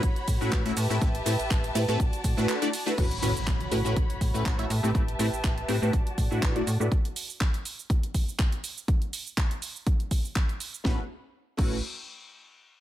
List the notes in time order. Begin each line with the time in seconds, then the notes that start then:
Already playing: F#4 C#5 B5
0.03 A1, kick, closed hi-hat, maracas, shaker
0.16 closed hi-hat, maracas
0.28 A2, kick, open hi-hat, ride, maracas, shaker
0.41 A2 A3 C#4 E4 F#4 B4, maracas, shaker
0.51 A1, kick, clap, closed hi-hat, maracas, shaker
0.65 A3 C#4 E4 F#4 E5, closed hi-hat, maracas
0.77 A2 G4 B4 E5 A5, open hi-hat, ride, maracas, shaker
0.90 A2 A3 C4 E4 G4 B4, maracas, shaker
1.01 A1 A3 C4 E4 G4 B4, kick, closed hi-hat, maracas, shaker
1.15 closed hi-hat, maracas
1.26 A2 A3 C4 E4 G4 B4, open hi-hat, ride, maracas, shaker
1.39 A1, closed hi-hat, maracas, shaker
1.51 A1, kick, clap, closed hi-hat, shaker, maracas
1.64 closed hi-hat, maracas
1.75 A2 A3 C4 E4 G4 B4, open hi-hat, ride, maracas, shaker
1.88 A2 A3 C4 E4 G4 B4, closed hi-hat, maracas, shaker
2.00 A1 F#4 D5, kick, closed hi-hat, maracas, shaker
2.13 closed hi-hat, maracas, shaker
2.24 A2, kick, open hi-hat, ride, maracas, shaker
2.37 A2 A3 D4 E4 F#4 B4, maracas, shaker
2.49 clap, closed hi-hat, maracas, shaker
2.62 A3 D4 E4 F#4 D5, closed hi-hat, shaker, maracas
2.73 open hi-hat, ride, maracas, shaker
2.86 A3 D4 E4 F#4 B4, maracas, shaker
2.98 A1 A3 C#4 E4 F#4 B4 C#5 B5, kick, closed hi-hat, crash, impact, maracas, shaker
3.11 closed hi-hat, maracas
3.22 A2 A3 C#4 E4 F#4 B4, open hi-hat, maracas, shaker
3.36 A1, maracas, shaker
3.47 A1, kick, clap, closed hi-hat, maracas, shaker
3.61 closed hi-hat, maracas
3.71 A2 A3 C#4 E4 F#4 B4, open hi-hat, shaker, maracas
3.84 A2 A3 C#4 E4 F#4 B4, maracas, shaker
3.97 A1, kick, closed hi-hat, maracas, shaker
4.10 closed hi-hat, maracas
4.21 A2, kick, open hi-hat, maracas, shaker
4.34 A2 A3 C#4 E4 F#4 B4, shaker, maracas
4.46 A1, kick, clap, closed hi-hat, shaker
4.58 A3 C#4 E4 F#4 E5, closed hi-hat, maracas
4.70 A2 G4 B4 E5 A5, open hi-hat, maracas, shaker
4.83 A2 A3 C4 E4 G4 B4, maracas, shaker
4.94 A1 A3 E4 G4 B4, kick, closed hi-hat, shaker, maracas
5.08 closed hi-hat, maracas
5.19 A2 A3 C4 E4 G4 B4, open hi-hat, maracas, shaker
5.33 A1, maracas, shaker
5.44 A1, kick, clap, closed hi-hat, shaker
5.58 closed hi-hat, maracas
5.68 A2 A3 C4 E4 G4 B4, open hi-hat, maracas, shaker
5.82 A2 A3 C4 E4 G4 B4, maracas, shaker
5.93 A1 F#4 D5, kick, closed hi-hat, maracas, shaker
6.06 closed hi-hat, maracas
6.18 A2, kick, open hi-hat, maracas, shaker
6.31 A2 A3 D4 E4 F#4 B4, maracas, shaker
6.42 A1, kick, clap, closed hi-hat, shaker
6.55 A3 D4 E4 F#4 D5, closed hi-hat
6.67 A2, open hi-hat, maracas, shaker
6.80 A2 A3 D4 E4 F#4 B4, maracas, shaker
6.92 kick, closed hi-hat, shaker
7.05 closed hi-hat
7.16 open hi-hat, shaker
7.30 shaker
7.41 kick, clap, closed hi-hat, shaker
7.54 closed hi-hat
7.65 open hi-hat, shaker
7.79 shaker
7.90 kick, closed hi-hat, shaker
8.03 closed hi-hat
8.14 kick, open hi-hat, shaker
8.29 shaker
8.39 kick, clap, closed hi-hat, shaker
8.52 closed hi-hat
8.64 open hi-hat, shaker
8.78 shaker
8.88 kick, closed hi-hat, shaker
9.02 closed hi-hat
9.13 open hi-hat, shaker
9.27 shaker
9.37 kick, clap, closed hi-hat, shaker
9.51 closed hi-hat
9.62 open hi-hat, shaker
9.76 shaker
9.87 kick, closed hi-hat, shaker
10.00 closed hi-hat
10.11 kick, open hi-hat, shaker
10.25 shaker
10.36 kick, clap, closed hi-hat, shaker
10.49 closed hi-hat
10.60 open hi-hat, shaker
10.74 shaker
10.84 A1 A3 C#4 E4 F#4 B4, kick, snare
11.57 A1 A3 C#4 E4 F#4 B4, kick, crash